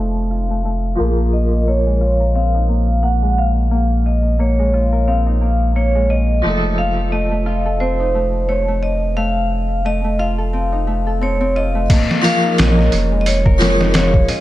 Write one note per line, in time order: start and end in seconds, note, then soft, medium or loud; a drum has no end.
0.00 0.97 F1 medium
0.00 0.94 F3 medium
0.00 0.50 A3 medium
0.00 0.95 C4 medium
0.00 2.34 C4 medium
0.00 0.96 D#4 medium
0.00 2.53 D#4 medium
0.00 0.30 F4 medium
0.00 0.98 A4 medium
0.00 1.05 A4 medium
0.31 2.01 F4 medium
0.50 0.65 A3 medium
0.65 1.05 A3 medium
0.96 6.39 F3 medium
0.96 6.41 A#3 medium
0.96 1.67 A#3 medium
1.00 6.42 A#1 medium
1.00 6.43 G#4 medium
1.33 1.68 D#5 medium
1.67 2.69 A#3 medium
1.67 2.38 C#5 medium
1.87 3.21 G#3 medium
2.01 4.53 F4 medium
2.20 4.32 A#4 medium
2.35 5.07 C4 medium
2.35 3.06 F5 medium
2.55 5.25 D#4 medium
2.69 3.03 A#3 medium
3.03 3.71 A#3 medium
3.03 3.39 F#5 medium
3.22 4.58 G#3 medium
3.38 4.08 F5 medium
3.71 4.39 A#3 medium
4.06 4.41 D#5 medium
4.39 5.41 A#3 medium
4.39 5.04 C#5 medium
4.59 5.94 G#3 medium
4.74 7.26 F4 medium
4.93 6.50 A#4 medium
5.07 7.80 C4 medium
5.07 5.78 F5 medium
5.27 7.97 D#4 medium
5.41 5.75 A#3 medium
5.75 6.50 A#3 medium
5.75 6.11 C#5 medium
5.95 6.50 G#3 medium
6.10 6.75 D#5 medium
6.42 11.88 F1 medium
6.42 11.87 C3 medium
6.42 11.85 F3 medium
6.42 7.11 A3 medium
6.47 11.88 D#4 medium
6.47 11.89 A4 medium
6.78 7.10 F5 medium
7.12 7.31 A3 medium
7.12 7.83 D#5 medium
7.32 8.14 A3 medium
7.46 9.98 F4 medium
7.66 9.85 A4 medium
7.80 10.53 C4 medium
7.80 8.51 C5 medium
8.00 10.70 D#4 medium
8.15 8.48 A3 medium
8.49 8.68 A3 medium
8.49 8.84 C#5 medium
8.68 9.16 A3 medium
8.83 9.18 D#5 medium
9.17 9.85 A3 medium
9.17 9.87 F5 medium
9.85 10.04 A3 medium
9.85 10.21 D#5 medium
10.04 10.87 A3 medium
10.19 11.55 F4 medium
10.19 11.18 F5 medium
10.38 11.06 A4 medium
10.53 11.21 C4 medium
10.72 12.43 D#4 medium
10.87 11.74 A3 medium
11.07 11.96 A4 medium
11.21 11.40 C4 medium
11.21 11.57 C#5 medium
11.41 12.64 C4 medium
11.56 13.94 F4 medium
11.56 12.26 D#5 medium
11.75 11.96 A3 medium
11.90 14.40 A#3 medium
11.90 kick loud
11.90 open hi-hat medium
11.90 crash medium
12.11 snare medium
12.22 13.56 F3 medium
12.22 13.57 A#3 medium
12.22 12.59 F5 medium
12.22 open hi-hat medium
12.28 13.59 C#4 medium
12.28 13.60 G#4 loud
12.43 13.79 D#4 loud
12.58 12.89 A#1 loud
12.58 14.28 C#4 medium
12.58 13.20 D#5 medium
12.58 snare loud
12.58 open hi-hat medium
12.78 13.45 A#4 medium
12.78 snare soft
12.92 14.26 F1 loud
12.92 open hi-hat medium
13.12 13.59 G#3 medium
13.21 13.27 D#5 medium
13.26 13.91 C#5 medium
13.26 open hi-hat medium
13.45 14.40 A#4 loud
13.45 kick medium
13.58 14.40 F3 medium
13.58 14.40 G#3 medium
13.58 14.40 A#3 medium
13.58 snare medium
13.58 open hi-hat medium
13.63 14.40 C#4 medium
13.79 14.40 D#4 loud
13.79 snare medium
13.94 14.40 F4 medium
13.94 14.27 C#5 medium
13.94 snare loud
13.94 open hi-hat medium
14.14 kick medium
14.28 14.40 C#4 medium
14.28 14.40 D#5 loud
14.28 open hi-hat medium